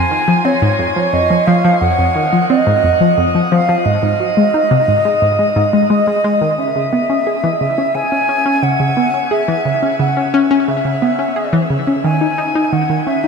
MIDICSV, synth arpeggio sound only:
0, 0, Header, 1, 2, 480
1, 0, Start_track
1, 0, Tempo, 681818
1, 796, Time_signature, 4, 2, 24, 8
1, 9346, End_track
2, 0, Start_track
2, 0, Title_t, "Synth arpeggio sound"
2, 0, Program_c, 0, 84
2, 76, Note_on_c, 0, 51, 76
2, 151, Note_off_c, 0, 51, 0
2, 196, Note_on_c, 0, 53, 76
2, 241, Note_off_c, 0, 53, 0
2, 316, Note_on_c, 0, 60, 80
2, 391, Note_off_c, 0, 60, 0
2, 437, Note_on_c, 0, 44, 103
2, 482, Note_off_c, 0, 44, 0
2, 556, Note_on_c, 0, 41, 76
2, 601, Note_off_c, 0, 41, 0
2, 677, Note_on_c, 0, 53, 77
2, 752, Note_off_c, 0, 53, 0
2, 797, Note_on_c, 0, 41, 84
2, 909, Note_off_c, 0, 41, 0
2, 918, Note_on_c, 0, 53, 77
2, 962, Note_off_c, 0, 53, 0
2, 1038, Note_on_c, 0, 53, 103
2, 1150, Note_off_c, 0, 53, 0
2, 1159, Note_on_c, 0, 53, 104
2, 1270, Note_off_c, 0, 53, 0
2, 1277, Note_on_c, 0, 41, 81
2, 1352, Note_off_c, 0, 41, 0
2, 1399, Note_on_c, 0, 41, 73
2, 1472, Note_off_c, 0, 41, 0
2, 1517, Note_on_c, 0, 51, 79
2, 1592, Note_off_c, 0, 51, 0
2, 1638, Note_on_c, 0, 53, 77
2, 1682, Note_off_c, 0, 53, 0
2, 1760, Note_on_c, 0, 60, 86
2, 1833, Note_off_c, 0, 60, 0
2, 1878, Note_on_c, 0, 44, 102
2, 1922, Note_off_c, 0, 44, 0
2, 1998, Note_on_c, 0, 41, 79
2, 2042, Note_off_c, 0, 41, 0
2, 2117, Note_on_c, 0, 53, 75
2, 2192, Note_off_c, 0, 53, 0
2, 2236, Note_on_c, 0, 41, 79
2, 2349, Note_off_c, 0, 41, 0
2, 2357, Note_on_c, 0, 53, 74
2, 2402, Note_off_c, 0, 53, 0
2, 2478, Note_on_c, 0, 53, 104
2, 2589, Note_off_c, 0, 53, 0
2, 2597, Note_on_c, 0, 53, 101
2, 2709, Note_off_c, 0, 53, 0
2, 2716, Note_on_c, 0, 44, 83
2, 2791, Note_off_c, 0, 44, 0
2, 2836, Note_on_c, 0, 44, 76
2, 2911, Note_off_c, 0, 44, 0
2, 2956, Note_on_c, 0, 54, 75
2, 3031, Note_off_c, 0, 54, 0
2, 3077, Note_on_c, 0, 56, 76
2, 3122, Note_off_c, 0, 56, 0
2, 3197, Note_on_c, 0, 63, 86
2, 3271, Note_off_c, 0, 63, 0
2, 3316, Note_on_c, 0, 48, 103
2, 3361, Note_off_c, 0, 48, 0
2, 3437, Note_on_c, 0, 44, 78
2, 3481, Note_off_c, 0, 44, 0
2, 3556, Note_on_c, 0, 56, 81
2, 3631, Note_off_c, 0, 56, 0
2, 3675, Note_on_c, 0, 44, 82
2, 3788, Note_off_c, 0, 44, 0
2, 3794, Note_on_c, 0, 56, 77
2, 3840, Note_off_c, 0, 56, 0
2, 3915, Note_on_c, 0, 44, 106
2, 3961, Note_off_c, 0, 44, 0
2, 4036, Note_on_c, 0, 56, 78
2, 4111, Note_off_c, 0, 56, 0
2, 4155, Note_on_c, 0, 56, 83
2, 4230, Note_off_c, 0, 56, 0
2, 4276, Note_on_c, 0, 56, 82
2, 4351, Note_off_c, 0, 56, 0
2, 4396, Note_on_c, 0, 56, 99
2, 4508, Note_off_c, 0, 56, 0
2, 4516, Note_on_c, 0, 51, 81
2, 4561, Note_off_c, 0, 51, 0
2, 4635, Note_on_c, 0, 49, 76
2, 4710, Note_off_c, 0, 49, 0
2, 4757, Note_on_c, 0, 49, 71
2, 4832, Note_off_c, 0, 49, 0
2, 4876, Note_on_c, 0, 59, 75
2, 4951, Note_off_c, 0, 59, 0
2, 4996, Note_on_c, 0, 61, 70
2, 5041, Note_off_c, 0, 61, 0
2, 5117, Note_on_c, 0, 68, 77
2, 5192, Note_off_c, 0, 68, 0
2, 5235, Note_on_c, 0, 52, 93
2, 5281, Note_off_c, 0, 52, 0
2, 5357, Note_on_c, 0, 49, 77
2, 5401, Note_off_c, 0, 49, 0
2, 5477, Note_on_c, 0, 61, 77
2, 5552, Note_off_c, 0, 61, 0
2, 5596, Note_on_c, 0, 49, 80
2, 5708, Note_off_c, 0, 49, 0
2, 5717, Note_on_c, 0, 61, 74
2, 5761, Note_off_c, 0, 61, 0
2, 5835, Note_on_c, 0, 61, 97
2, 5945, Note_off_c, 0, 61, 0
2, 5953, Note_on_c, 0, 61, 97
2, 6067, Note_off_c, 0, 61, 0
2, 6073, Note_on_c, 0, 49, 78
2, 6150, Note_off_c, 0, 49, 0
2, 6194, Note_on_c, 0, 49, 75
2, 6270, Note_off_c, 0, 49, 0
2, 6314, Note_on_c, 0, 59, 73
2, 6390, Note_off_c, 0, 59, 0
2, 6435, Note_on_c, 0, 61, 72
2, 6481, Note_off_c, 0, 61, 0
2, 6555, Note_on_c, 0, 68, 82
2, 6631, Note_off_c, 0, 68, 0
2, 6675, Note_on_c, 0, 52, 99
2, 6721, Note_off_c, 0, 52, 0
2, 6796, Note_on_c, 0, 49, 71
2, 6841, Note_off_c, 0, 49, 0
2, 6917, Note_on_c, 0, 61, 72
2, 6992, Note_off_c, 0, 61, 0
2, 7036, Note_on_c, 0, 49, 81
2, 7149, Note_off_c, 0, 49, 0
2, 7158, Note_on_c, 0, 61, 72
2, 7202, Note_off_c, 0, 61, 0
2, 7278, Note_on_c, 0, 61, 105
2, 7390, Note_off_c, 0, 61, 0
2, 7397, Note_on_c, 0, 61, 101
2, 7509, Note_off_c, 0, 61, 0
2, 7519, Note_on_c, 0, 49, 80
2, 7593, Note_off_c, 0, 49, 0
2, 7638, Note_on_c, 0, 49, 71
2, 7712, Note_off_c, 0, 49, 0
2, 7759, Note_on_c, 0, 59, 73
2, 7833, Note_off_c, 0, 59, 0
2, 7877, Note_on_c, 0, 61, 69
2, 7922, Note_off_c, 0, 61, 0
2, 7998, Note_on_c, 0, 68, 79
2, 8072, Note_off_c, 0, 68, 0
2, 8116, Note_on_c, 0, 52, 104
2, 8161, Note_off_c, 0, 52, 0
2, 8238, Note_on_c, 0, 49, 72
2, 8282, Note_off_c, 0, 49, 0
2, 8359, Note_on_c, 0, 61, 77
2, 8432, Note_off_c, 0, 61, 0
2, 8478, Note_on_c, 0, 51, 81
2, 8590, Note_off_c, 0, 51, 0
2, 8598, Note_on_c, 0, 63, 74
2, 8642, Note_off_c, 0, 63, 0
2, 8717, Note_on_c, 0, 63, 96
2, 8829, Note_off_c, 0, 63, 0
2, 8838, Note_on_c, 0, 63, 95
2, 8950, Note_off_c, 0, 63, 0
2, 8959, Note_on_c, 0, 51, 82
2, 9033, Note_off_c, 0, 51, 0
2, 9079, Note_on_c, 0, 51, 74
2, 9153, Note_off_c, 0, 51, 0
2, 9199, Note_on_c, 0, 61, 77
2, 9273, Note_off_c, 0, 61, 0
2, 9321, Note_on_c, 0, 63, 79
2, 9346, Note_off_c, 0, 63, 0
2, 9346, End_track
0, 0, End_of_file